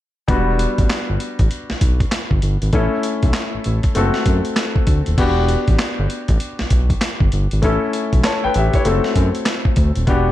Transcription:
0.28 E1 G3 B3 D4 F#4, kick, closed hi-hat
0.59 closed hi-hat
0.78 A1, kick, closed hi-hat
0.90 snare, clap, closed hi-hat
1.09 G1
1.20 closed hi-hat
1.39 A1, kick, closed hi-hat
1.51 closed hi-hat
1.70 B1, snare
1.81 B1, kick, closed hi-hat
2.00 kick, closed hi-hat
2.12 snare, clap, closed hi-hat
2.31 G1, kick
2.42 G1, closed hi-hat
2.62 G#1, closed hi-hat
2.73 A1 A3 C#4 E4 A4, kick, closed hi-hat
3.03 closed hi-hat
3.23 B1, kick, closed hi-hat
3.34 snare, clap, closed hi-hat
3.54 A1
3.64 A1, closed hi-hat
3.83 kick, closed hi-hat
3.95 F#1 A3 C4 F#4 A4, closed hi-hat
4.14 snare
4.26 F#2, kick, closed hi-hat
4.45 closed hi-hat
4.56 snare, clap, closed hi-hat
4.76 kick
4.87 D2, kick, closed hi-hat
5.06 D#1, closed hi-hat
5.18 E1 B3 D4 F#4 G4, kick, closed hi-hat, crash
5.49 closed hi-hat
5.68 A1, kick, closed hi-hat
5.79 snare, clap, closed hi-hat
5.99 G1
6.10 closed hi-hat
6.28 A1, kick, closed hi-hat
6.40 closed hi-hat
6.59 B1, snare
6.70 B1, kick, closed hi-hat
6.90 kick, closed hi-hat
7.01 snare, clap, closed hi-hat
7.20 G1, kick
7.32 G1, closed hi-hat
7.51 G#1, closed hi-hat
7.62 A1 A3 C#4 E4 A4, kick, closed hi-hat
7.93 closed hi-hat
8.13 B1, kick, closed hi-hat
8.24 C#5 A5, snare, clap, closed hi-hat
8.44 A1 B4 G5
8.54 A1 G4 E5, closed hi-hat
8.73 E4 C#5, kick, closed hi-hat
8.85 F#1 A3 C4 F#4 A4, closed hi-hat
9.04 snare
9.16 F#2, kick, closed hi-hat
9.35 closed hi-hat
9.46 snare, clap, closed hi-hat
9.65 kick
9.76 D2, kick, closed hi-hat
9.96 D#1, closed hi-hat
10.07 E1 B3 D4 F#4 G4, kick, closed hi-hat

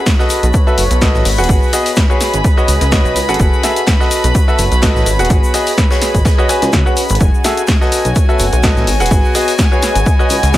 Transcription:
Already playing: F#4 B4 C#5 B5
0.06 kick, snare, closed hi-hat, shaker
0.19 F#4 A4 B4 D#5, snare, shaker
0.29 B3, open hi-hat, shaker
0.43 B1, closed hi-hat, shaker
0.53 kick, closed hi-hat, shaker
0.67 F#4 A4 B4 E5, shaker
0.78 F#1, open hi-hat, shaker
0.91 B1, closed hi-hat, shaker
1.02 F#4 A4 B4 D#5, kick, snare, closed hi-hat, shaker
1.14 A1, snare, shaker
1.25 G#1 G#4, open hi-hat, shaker
1.38 D#1 F#4 G#4 B4 D#5 F#5, closed hi-hat, shaker
1.44 closed hi-hat
1.49 G#1, kick, shaker
1.63 shaker
1.70 F#4 G#4 B4 D#5 B5, open hi-hat, shaker
1.79 G#5
1.86 closed hi-hat, open hi-hat, shaker
1.96 kick, snare, closed hi-hat, shaker
1.98 shaker
2.10 F#4 G#4 B4 C#5, shaker
2.21 snare, open hi-hat, shaker
2.33 G#1, closed hi-hat, shaker
2.44 C#4, kick, closed hi-hat, shaker
2.57 F#4 B4 C#5 D#5, shaker
2.68 C#2, open hi-hat, shaker
2.81 C#2, snare, closed hi-hat, shaker
2.92 F#4 B4 C#5 D#5, kick, snare, closed hi-hat, shaker
3.05 B1, closed hi-hat, shaker
3.16 C#2, open hi-hat, shaker
3.29 G#1 F#4 G#4 A4 F#5, closed hi-hat, shaker
3.34 closed hi-hat
3.40 F#1 F#4, kick, shaker
3.53 shaker
3.63 F#4 G#4 A4 E5, snare, open hi-hat, shaker
3.73 C#5, closed hi-hat
3.77 shaker
3.87 kick, snare, closed hi-hat, shaker
4.00 F#4 A4 B4 D#5, snare, shaker
4.11 B3, open hi-hat, shaker
4.24 B1, closed hi-hat, shaker
4.35 kick, closed hi-hat, shaker
4.48 F#4 A4 B4 E5, shaker
4.58 F#1, open hi-hat, shaker
4.72 B1, closed hi-hat, shaker
4.82 F#4 A4 B4 D#5, kick, snare, closed hi-hat, shaker
4.95 A1, snare, shaker
5.06 G#1 G#4, open hi-hat, shaker
5.19 D#1 F#4 G#4 B4 F#5, closed hi-hat, shaker
5.25 D#5, closed hi-hat
5.30 G#1, kick, closed hi-hat, shaker
5.43 G#5, shaker
5.54 F#4 G#4 B4 D#5 B5, open hi-hat, shaker
5.67 open hi-hat, shaker
5.77 kick, snare, closed hi-hat, shaker
5.91 F#4 G#4 B4 C#5, snare, shaker
6.02 snare, open hi-hat, shaker
6.14 G#1, kick, closed hi-hat, shaker
6.25 C#4, kick, snare, closed hi-hat, shaker
6.38 F#4 B4 C#5 D#5, shaker
6.49 F#4 B4 C#5 G#5, open hi-hat, shaker
6.62 C#2, snare, closed hi-hat, shaker
6.73 C#2, kick, snare, closed hi-hat, shaker
6.86 F#4 B4 C#5 F#5, shaker
6.97 open hi-hat, shaker
7.09 G#1, closed hi-hat, shaker
7.11 shaker
7.15 closed hi-hat
7.20 F#1 F#4 G#5, kick, shaker
7.27 C#5
7.34 shaker
7.44 F#4 G#4 A4 E5, snare, open hi-hat, shaker
7.57 closed hi-hat, shaker
7.67 kick, snare, closed hi-hat, shaker
7.81 F#4 A4 B4 D#5, snare, shaker
7.92 B3, open hi-hat, shaker
8.05 B1, closed hi-hat, shaker
8.16 kick, closed hi-hat, shaker
8.29 F#4 A4 B4 E5, shaker
8.39 F#1, open hi-hat, shaker
8.53 B1, closed hi-hat, shaker
8.63 F#4 A4 B4 D#5, kick, snare, closed hi-hat, shaker
8.76 A1, snare, shaker
8.87 G#1 G#4, open hi-hat, shaker
9.00 D#1 F#4 G#4 B4 F#5, closed hi-hat, shaker
9.05 G#5, closed hi-hat
9.11 G#1, kick, shaker
9.25 shaker
9.29 D#5
9.35 F#4 G#4 B4 D#5, open hi-hat, shaker
9.41 B5
9.48 closed hi-hat, open hi-hat, shaker
9.58 kick, snare, closed hi-hat, shaker
9.72 F#4 G#4 B4 C#5, shaker
9.82 snare, open hi-hat, shaker
9.95 G#1, closed hi-hat, shaker
10.06 C#4, kick, closed hi-hat, shaker
10.19 F#4 B4 C#5 D#5, shaker
10.30 C#2, open hi-hat, shaker
10.43 C#2, snare, closed hi-hat, shaker
10.54 F#4 B4 C#5 D#5, kick, snare, closed hi-hat, shaker

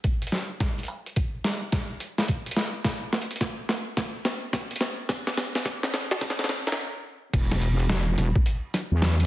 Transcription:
0.04 kick, closed hi-hat
0.22 closed hi-hat
0.27 closed hi-hat
0.32 snare
0.60 kick, snare, closed hi-hat
0.78 closed hi-hat
0.80 closed hi-hat
0.83 closed hi-hat
0.85 closed hi-hat
0.88 closed hi-hat
1.06 closed hi-hat
1.16 kick, closed hi-hat
1.44 snare, closed hi-hat
1.72 kick, snare, closed hi-hat
2.00 closed hi-hat
2.18 snare
2.28 kick, closed hi-hat
2.46 closed hi-hat
2.51 closed hi-hat
2.56 snare
2.84 kick, snare, closed hi-hat
3.13 snare, closed hi-hat
3.22 closed hi-hat
3.31 closed hi-hat
3.36 closed hi-hat
3.41 kick, snare, closed hi-hat
3.69 snare, closed hi-hat
3.97 kick, snare, closed hi-hat
4.25 snare, closed hi-hat
4.53 kick, snare, closed hi-hat
4.71 closed hi-hat
4.76 closed hi-hat
4.81 snare
5.09 kick, snare, closed hi-hat
5.27 snare, closed hi-hat
5.34 snare, closed hi-hat
5.37 closed hi-hat
5.43 closed hi-hat
5.47 closed hi-hat
5.55 snare, closed hi-hat
5.65 kick, snare, closed hi-hat
5.83 snare
5.94 snare, closed hi-hat
6.11 snare
6.21 kick, snare, closed hi-hat
6.30 snare
6.39 snare
6.44 snare
6.49 snare, closed hi-hat
6.67 snare
6.72 snare
7.33 E1, kick, closed hi-hat, crash
7.51 snare
7.62 closed hi-hat
7.80 closed hi-hat
7.89 snare, closed hi-hat
8.18 E1, snare, closed hi-hat
8.36 kick
8.46 closed hi-hat
8.74 snare, closed hi-hat
8.91 E2
9.02 snare, closed hi-hat
9.20 closed hi-hat

